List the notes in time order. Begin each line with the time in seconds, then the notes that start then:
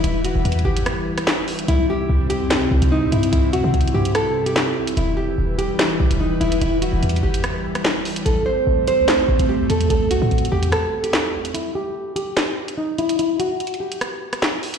Already playing: E3 G3 E4 B4
0.04 E1 E4, closed hi-hat
0.24 F#4, closed hi-hat
0.35 E1
0.45 E2, closed hi-hat
0.52 closed hi-hat
0.59 closed hi-hat
0.65 G1 G4
0.77 closed hi-hat
0.86 cross-stick, closed hi-hat
1.18 cross-stick, closed hi-hat
1.27 snare, clap
1.48 open hi-hat
1.59 closed hi-hat
1.68 C2 C3 C4 E4, closed hi-hat
1.90 G4
2.09 C2
2.30 G4, closed hi-hat
2.41 G2
2.51 snare, clap, closed hi-hat
2.56 C2
2.71 C2
2.82 C2, closed hi-hat
2.92 D#4
3.03 C3
3.12 G2 E4, closed hi-hat
3.23 closed hi-hat
3.32 C2 E4, closed hi-hat
3.53 G2 F#4, closed hi-hat
3.64 C3
3.74 C2, closed hi-hat
3.81 closed hi-hat
3.88 closed hi-hat
3.94 G2 G4
4.05 closed hi-hat
4.15 A4, cross-stick, closed hi-hat
4.46 G4, closed hi-hat
4.56 snare, clap
4.77 B1
4.87 closed hi-hat
4.97 E1 E3 G3 E4 B4, closed hi-hat
5.17 G4
5.38 E1
5.58 G4, closed hi-hat
5.70 G1
5.79 snare, clap, closed hi-hat
6.00 B1
6.11 E1, closed hi-hat
6.20 D#4
6.41 E1 E4, closed hi-hat
6.52 closed hi-hat
6.61 E1 E4, closed hi-hat
6.82 F#4, closed hi-hat
6.93 E1
7.03 E2, closed hi-hat
7.09 closed hi-hat
7.16 closed hi-hat
7.23 G1 G4
7.34 closed hi-hat
7.44 cross-stick, closed hi-hat
7.75 cross-stick, closed hi-hat
7.85 snare, clap
8.05 open hi-hat
8.16 closed hi-hat
8.26 A1 A3 C4 A4, closed hi-hat
8.46 C5
8.67 A1
8.88 C5, closed hi-hat
8.98 E2
9.08 snare, clap, closed hi-hat
9.13 A1
9.29 A1
9.39 A1, closed hi-hat
9.49 G4
9.60 A2
9.70 E2 A4, closed hi-hat
9.81 closed hi-hat
9.90 A1 A4, closed hi-hat
10.11 E2 F#4, closed hi-hat
10.22 A2
10.31 A1, closed hi-hat
10.38 closed hi-hat
10.45 closed hi-hat
10.52 E2 G4
10.63 closed hi-hat
10.72 A4, cross-stick, closed hi-hat
11.04 G4, closed hi-hat
11.13 snare, clap
11.34 G1
11.45 closed hi-hat
11.54 E4, closed hi-hat
11.75 G4
12.16 G4, closed hi-hat
12.37 snare, clap, closed hi-hat
12.68 closed hi-hat
12.78 D#4
12.98 E4, closed hi-hat
13.09 closed hi-hat
13.19 E4, closed hi-hat
13.40 F#4, closed hi-hat
13.60 closed hi-hat
13.67 closed hi-hat
13.74 closed hi-hat
13.80 G4
13.92 closed hi-hat
14.01 cross-stick, closed hi-hat
14.33 cross-stick, closed hi-hat
14.42 snare, clap
14.63 open hi-hat
14.74 closed hi-hat